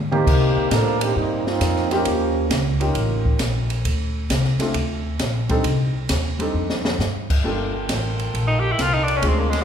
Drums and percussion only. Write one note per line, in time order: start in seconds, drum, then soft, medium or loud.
0.12 mid tom medium
0.27 kick medium
0.27 crash medium
0.71 kick soft
0.71 snare medium
0.71 hi-hat pedal medium
0.71 ride medium
1.01 ride medium
1.16 kick soft
1.47 snare soft
1.61 kick soft
1.61 snare medium
1.61 hi-hat pedal medium
1.61 ride medium
1.76 snare soft
1.91 snare soft
1.91 ride soft
2.05 kick soft
2.05 ride medium
2.50 kick soft
2.50 snare medium
2.50 hi-hat pedal medium
2.50 ride medium
2.81 ride soft
2.95 kick soft
2.95 ride medium
3.25 kick medium
3.39 kick soft
3.39 snare medium
3.39 hi-hat pedal medium
3.39 ride medium
3.70 ride soft
3.85 kick soft
3.85 ride medium
4.30 kick soft
4.30 snare medium
4.30 hi-hat pedal medium
4.30 ride medium
4.45 snare soft
4.59 snare soft
4.59 ride soft
4.74 kick soft
4.74 ride medium
5.19 kick soft
5.19 snare medium
5.19 hi-hat pedal medium
5.19 ride medium
5.49 kick soft
5.49 ride soft
5.64 kick soft
5.64 ride medium
6.09 kick soft
6.09 snare medium
6.09 hi-hat pedal medium
6.09 ride medium
6.40 ride soft
6.70 snare medium
6.85 snare medium
7.00 snare medium
7.00 hi-hat pedal medium
7.30 kick medium
7.30 crash medium
7.89 kick soft
7.89 snare medium
7.89 hi-hat pedal medium
7.89 ride medium
8.19 ride soft
8.34 kick soft
8.34 ride soft
8.79 kick soft
8.79 snare medium
8.79 hi-hat pedal medium
8.79 ride medium
9.08 ride soft
9.23 kick soft
9.23 ride medium
9.53 snare soft
9.53 ride soft